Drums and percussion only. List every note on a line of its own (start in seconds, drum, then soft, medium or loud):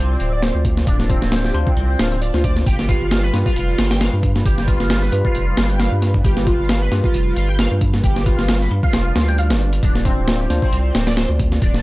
0.20 closed hi-hat medium
0.42 snare loud
0.42 closed hi-hat medium
0.65 kick medium
0.65 closed hi-hat medium
0.77 snare medium
0.87 kick loud
0.87 closed hi-hat medium
1.00 snare soft
1.10 kick medium
1.10 closed hi-hat medium
1.22 snare medium
1.32 snare loud
1.32 closed hi-hat medium
1.44 snare soft
1.54 closed hi-hat medium
1.67 kick loud
1.77 closed hi-hat medium
1.99 snare loud
1.99 closed hi-hat medium
2.12 closed hi-hat soft
2.22 closed hi-hat medium
2.34 snare medium
2.44 kick loud
2.44 closed hi-hat medium
2.56 snare soft
2.66 kick loud
2.66 closed hi-hat medium
2.79 snare medium
2.89 kick medium
2.89 closed hi-hat medium
3.11 snare loud
3.11 closed hi-hat medium
3.34 snare medium
3.34 closed hi-hat medium
3.46 kick loud
3.56 closed hi-hat medium
3.79 snare loud
3.79 closed hi-hat medium
3.91 snare loud
3.91 closed hi-hat medium
4.01 snare loud
4.01 closed hi-hat medium
4.23 kick loud
4.23 closed hi-hat medium
4.36 snare medium
4.46 kick loud
4.46 closed hi-hat medium
4.58 snare medium
4.68 kick medium
4.68 closed hi-hat medium
4.80 snare medium
4.90 snare loud
4.90 closed hi-hat medium
5.02 snare soft
5.12 closed hi-hat medium
5.25 kick medium
5.35 closed hi-hat medium
5.57 snare loud
5.57 closed hi-hat medium
5.70 closed hi-hat soft
5.80 snare loud
5.80 closed hi-hat medium
6.02 snare soft
6.02 closed hi-hat medium
6.14 kick medium
6.24 kick loud
6.24 closed hi-hat medium
6.37 snare medium
6.47 kick medium
6.47 closed hi-hat medium
6.69 snare loud
6.69 closed hi-hat medium
6.92 snare medium
6.92 closed hi-hat medium
7.04 kick loud
7.14 closed hi-hat medium
7.36 closed hi-hat medium
7.59 snare loud
7.59 closed hi-hat medium
7.81 kick loud
7.81 closed hi-hat medium
7.94 snare medium
8.04 kick loud
8.04 closed hi-hat medium
8.16 snare medium
8.26 kick medium
8.26 closed hi-hat medium
8.39 snare medium
8.49 snare loud
8.49 closed hi-hat loud
8.61 snare soft
8.71 closed hi-hat medium
8.83 kick loud
8.93 snare loud
8.93 closed hi-hat medium
9.16 snare loud
9.16 closed hi-hat medium
9.28 closed hi-hat soft
9.38 closed hi-hat medium
9.50 snare loud
9.50 closed hi-hat medium
9.61 closed hi-hat soft
9.73 closed hi-hat medium
9.83 kick loud
9.83 closed hi-hat medium
9.95 snare medium
10.05 kick loud
10.05 closed hi-hat medium
10.28 snare loud
10.28 closed hi-hat medium
10.50 snare soft
10.50 closed hi-hat medium
10.62 kick loud
10.73 closed hi-hat medium
10.95 snare loud
10.95 closed hi-hat medium
11.07 snare loud
11.07 closed hi-hat medium
11.17 snare loud
11.17 closed hi-hat medium
11.40 kick loud
11.40 closed hi-hat medium
11.52 snare medium
11.62 kick loud
11.62 closed hi-hat loud
11.74 snare medium